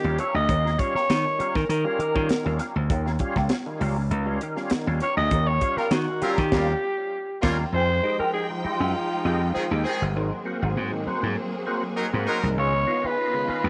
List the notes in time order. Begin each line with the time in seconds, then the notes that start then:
Already playing: G4
0.04 D#2 G3 C#4 F4, muted clean electric guitar stroke
0.18 C#4 F4 G4 A#4 C#5 F5, closed hi-hat
0.34 D2 D#5, muted clean electric guitar stroke
0.49 D#2 D#3 C#4 G4 A#4 F5, kick, closed hi-hat
0.65 C#4 F4, snare
0.78 G3 C#4 F4 C#5, muted clean electric guitar stroke, kick, closed hi-hat
0.95 C#4 G4 A#4 C#5 F5, muted slap bass stroke, snare
1.09 D#3 C#4 F4, snare, closed hi-hat
1.25 D#3, muted clean electric guitar stroke
1.39 G3 C#4 F4 G4 A#4 F5, muted slap bass stroke, closed hi-hat
1.55 D#3 A#4, muted clean electric guitar stroke, kick, snare
1.69 D#3 A#4, muted clean electric guitar stroke, closed hi-hat
1.84 G3 C#4 F4
1.98 D#3 C#4 G4 A#4 F5, muted slap bass stroke, closed hi-hat
2.14 D#3 G3 C#4 F4, muted clean electric guitar stroke, kick
2.29 D#3, muted slap bass stroke, snare, closed hi-hat
2.45 D#2 G3 C#4 F4, muted clean electric guitar stroke
2.59 C#4 F4 G4 A#4 F5, snare, closed hi-hat
2.75 D2, muted clean electric guitar stroke
2.90 D#2 D#3 C#4 G4 A#4 F5, kick, closed hi-hat
3.06 C#4 F4, snare
3.19 G3 C#4 F4, muted clean electric guitar stroke, kick, closed hi-hat
3.36 C#2 C#4 G4 A#4 F5, kick, snare
3.49 C#4 F4, snare, closed hi-hat
3.66 D#3, muted clean electric guitar stroke
3.80 C#2 G3 C#4 F4 G4 A#4 F5, open hi-hat
3.98 muted clean electric guitar stroke
4.11 C#2, muted clean electric guitar stroke, closed hi-hat
4.26 G3 C#4 F4
4.41 D#3 C#4 G4 A#4 F5, closed hi-hat
4.56 G3 C#4 F4, muted clean electric guitar stroke, snare
4.70 D#3, muted slap bass stroke, snare, closed hi-hat
4.86 D#2 G3 C#4 F4, muted clean electric guitar stroke
5.00 C#4 F4 G4 A#4 C#5 F5, closed hi-hat
5.17 D2 D#5, muted clean electric guitar stroke
5.31 D#2 D#3 C#4 G4 A#4 F5, kick, closed hi-hat
5.47 C#4 F4 C#5
5.61 G3 C#4 F4, muted clean electric guitar stroke, kick, closed hi-hat
5.77 G3 C#4 F4 G4 A#4 F5, muted slap bass stroke, snare
5.91 D#3 C#4 F4 F#4, muted clean electric guitar stroke, snare, closed hi-hat
6.08 D#3, muted clean electric guitar stroke
6.21 G3 C#4 F4 G4 A#4 F5, muted slap bass stroke, closed hi-hat
6.38 D#3, muted clean electric guitar stroke, kick, snare
6.52 D#2 G3 C#4 F4 G4 A#4 F5, kick, snare, crash
7.42 D#2 G3 C#4 F4 G4 A#4 F5, kick, snare, crash
7.72 F2 F3 G#3 D#4 G#4 C5 G5
8.03 G#3 D#4 G4, muted clean electric guitar stroke
8.19 D#4 G4 G#4 A#4 C5 G5, muted slap bass stroke
8.33 D#4 G4 G#4, muted clean electric guitar stroke
8.50 F3, muted clean electric guitar stroke
8.63 D#4 F4 G4 G#4 C5 G5, muted slap bass stroke
8.80 F#2, muted clean electric guitar stroke
8.95 muted clean electric guitar stroke
9.24 F2 G#3 D#4 G4 G#4 C5 G5
9.41 muted clean electric guitar stroke
9.54 D#3 F3 C4 G#4, muted slap bass stroke
9.71 D#2 G#3 D#4 G4, muted clean electric guitar stroke
9.84 D#3 C4 D#4 G4 G#4 C5 G5
10.01 G1, muted clean electric guitar stroke
10.16 G#1 G#2 D#3 F#3 A#3 C4 D#4 G#4 A#4 C5 F#5
10.45 A#3 C4 F#4, muted clean electric guitar stroke
10.62 G#1 C4 D#4 F#4 A#4 C5 F#5
10.75 G#2 C4 F#4, muted clean electric guitar stroke
10.92 G#2 D#3, muted clean electric guitar stroke
11.06 C4 D#4 F#4 A#4 C5 F#5, muted slap bass stroke
11.23 G#2, muted clean electric guitar stroke
11.36 muted clean electric guitar stroke
11.66 A#3 C4 D#4 F#4 A#4 C5 F#5
11.83 muted clean electric guitar stroke
11.97 F#3 D#4 A#4
12.13 G#2 A#3 C4 F#4, muted clean electric guitar stroke
12.27 F#3 D#4 A#4 C5 F#5
12.43 C2 G#2 D#3, muted clean electric guitar stroke
12.57 C#2 C#3 D#3 G#3 B3 C#4 D#4 F4 G#4 B4 C#5 F5
12.87 B3 D#4 F4, muted clean electric guitar stroke
13.04 D#4 F4 G#4 B4 F5, muted slap bass stroke
13.17 D#4 F4, muted clean electric guitar stroke
13.33 C#3 G#3, muted clean electric guitar stroke
13.47 D#4 F4 G#4 B4 F5, muted slap bass stroke
13.64 D#2, muted clean electric guitar stroke